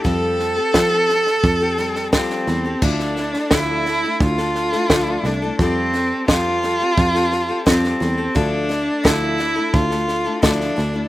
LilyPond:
<<
  \new Staff \with { instrumentName = "Cello" } { \time 4/4 \key d \minor \tempo 4 = 87 a'2. c'4 | d'4 e'4 f'4. d'8 | c'4 f'2 c'4 | d'4 e'4 f'4 d'4 | }
  \new Staff \with { instrumentName = "Steel-string acoustic guitar" } { \time 4/4 \key d \minor <f g c' g' a'>8. <c' g' a'>16 <f g c' g' a'>16 <c' g' a'>4 <c' g' a'>16 <g c' g' a'>8 <f g c' g' a'>8 <g c' g' a'>16 <c' g' a'>16 | <d f a d' e' a'>8 <a d' e' a'>8 <d f a d' e' a'>8 <a d' e' a'>16 <a d' e' a'>8 <a d' a'>8 <a d' e' a'>16 <d f a d' a'>8 <a d' e' a'>16 <a d' e' a'>16 | <f g c' g' a'>8 <g c' g' a'>8 <f g c' g' a'>8 <g c' g' a'>16 <c' g' a'>8 <c' g' a'>8 <c' g' a'>16 <f g c' g' a'>8 <g c' g' a'>16 <c' g' a'>16 | <d f a d' e' a'>8 <a d' e' a'>8 <d f a d' e' a'>8 <a d' e' a'>16 <a d' e' a'>8 <a d' a'>8 <a d' e' a'>16 <d f a d' e' a'>8 <a d' e' a'>16 <a d' e' a'>16 | }
  \new Staff \with { instrumentName = "Picked electric bass" } { \clef bass \time 4/4 \key d \minor f,4 f4 f,4. e,8 | d,4 d,4 d,4 d,8 c,8 | f,4 f,4 f,4 f,8 e,8 | d,4 d,4 d,4 d,8 d,8 | }
  \new DrumStaff \with { instrumentName = "Drums" } \drummode { \time 4/4 <bd sn>8 sn8 <bd sn>8 sn16 sn16 <bd sn>8 sn16 sn16 <bd sn>16 sn16 sn8 | <cymc bd sn>16 sn16 sn16 sn16 <bd sn>8 sn8 <bd sn>16 sn16 sn16 sn16 <bd sn>8 sn8 | <bd sn>8 sn8 <bd sn>8 sn8 <bd sn>16 sn16 sn8 <bd sn>16 sn16 sn8 | <bd sn>8 sn8 <bd sn>8 sn8 <bd sn>16 sn16 sn8 <bd sn>16 sn16 sn8 | }
>>